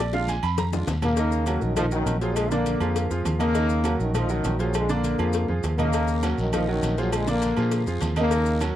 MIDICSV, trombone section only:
0, 0, Header, 1, 2, 480
1, 0, Start_track
1, 0, Key_signature, -6, "minor"
1, 0, Tempo, 297324
1, 1899, Time_signature, 4, 2, 24, 8
1, 14139, End_track
2, 0, Start_track
2, 0, Title_t, "Trombone section"
2, 0, Program_c, 0, 61
2, 1665, Note_on_c, 0, 58, 116
2, 1677, Note_on_c, 0, 49, 84
2, 2555, Note_off_c, 0, 58, 0
2, 2562, Note_off_c, 0, 49, 0
2, 2611, Note_on_c, 0, 51, 94
2, 2636, Note_on_c, 0, 42, 74
2, 2847, Note_on_c, 0, 53, 103
2, 2854, Note_off_c, 0, 51, 0
2, 2866, Note_off_c, 0, 42, 0
2, 2869, Note_on_c, 0, 46, 77
2, 2957, Note_off_c, 0, 53, 0
2, 2974, Note_off_c, 0, 46, 0
2, 3091, Note_on_c, 0, 51, 95
2, 3119, Note_on_c, 0, 42, 76
2, 3539, Note_off_c, 0, 51, 0
2, 3541, Note_on_c, 0, 54, 96
2, 3554, Note_off_c, 0, 42, 0
2, 3579, Note_on_c, 0, 46, 75
2, 3780, Note_off_c, 0, 54, 0
2, 3787, Note_on_c, 0, 56, 105
2, 3801, Note_off_c, 0, 46, 0
2, 3826, Note_on_c, 0, 50, 81
2, 4021, Note_on_c, 0, 58, 99
2, 4026, Note_off_c, 0, 50, 0
2, 4041, Note_off_c, 0, 56, 0
2, 4045, Note_on_c, 0, 50, 73
2, 4998, Note_off_c, 0, 58, 0
2, 5010, Note_off_c, 0, 50, 0
2, 5481, Note_on_c, 0, 58, 123
2, 5507, Note_on_c, 0, 49, 100
2, 6383, Note_off_c, 0, 58, 0
2, 6396, Note_off_c, 0, 49, 0
2, 6459, Note_on_c, 0, 51, 96
2, 6466, Note_on_c, 0, 42, 75
2, 6680, Note_off_c, 0, 51, 0
2, 6684, Note_off_c, 0, 42, 0
2, 6723, Note_on_c, 0, 53, 108
2, 6734, Note_on_c, 0, 46, 82
2, 6949, Note_off_c, 0, 53, 0
2, 6954, Note_off_c, 0, 46, 0
2, 6956, Note_on_c, 0, 51, 99
2, 6968, Note_on_c, 0, 42, 77
2, 7424, Note_on_c, 0, 54, 91
2, 7425, Note_off_c, 0, 51, 0
2, 7431, Note_off_c, 0, 42, 0
2, 7442, Note_on_c, 0, 46, 76
2, 7643, Note_off_c, 0, 54, 0
2, 7652, Note_off_c, 0, 46, 0
2, 7676, Note_on_c, 0, 50, 84
2, 7682, Note_on_c, 0, 56, 101
2, 7894, Note_off_c, 0, 50, 0
2, 7908, Note_off_c, 0, 56, 0
2, 7913, Note_on_c, 0, 50, 74
2, 7917, Note_on_c, 0, 58, 99
2, 8864, Note_off_c, 0, 50, 0
2, 8866, Note_off_c, 0, 58, 0
2, 9336, Note_on_c, 0, 58, 113
2, 9348, Note_on_c, 0, 49, 89
2, 10231, Note_off_c, 0, 58, 0
2, 10238, Note_off_c, 0, 49, 0
2, 10316, Note_on_c, 0, 51, 85
2, 10326, Note_on_c, 0, 42, 71
2, 10530, Note_off_c, 0, 51, 0
2, 10535, Note_off_c, 0, 42, 0
2, 10548, Note_on_c, 0, 53, 104
2, 10560, Note_on_c, 0, 46, 81
2, 10765, Note_off_c, 0, 53, 0
2, 10772, Note_off_c, 0, 46, 0
2, 10804, Note_on_c, 0, 51, 96
2, 10815, Note_on_c, 0, 42, 74
2, 11270, Note_off_c, 0, 51, 0
2, 11275, Note_off_c, 0, 42, 0
2, 11279, Note_on_c, 0, 54, 98
2, 11297, Note_on_c, 0, 46, 75
2, 11508, Note_off_c, 0, 54, 0
2, 11517, Note_off_c, 0, 46, 0
2, 11525, Note_on_c, 0, 56, 110
2, 11537, Note_on_c, 0, 50, 84
2, 11748, Note_off_c, 0, 50, 0
2, 11751, Note_off_c, 0, 56, 0
2, 11768, Note_on_c, 0, 50, 73
2, 11773, Note_on_c, 0, 58, 98
2, 12648, Note_off_c, 0, 50, 0
2, 12651, Note_off_c, 0, 58, 0
2, 13211, Note_on_c, 0, 49, 93
2, 13223, Note_on_c, 0, 58, 124
2, 13865, Note_off_c, 0, 49, 0
2, 13872, Note_off_c, 0, 58, 0
2, 14139, End_track
0, 0, End_of_file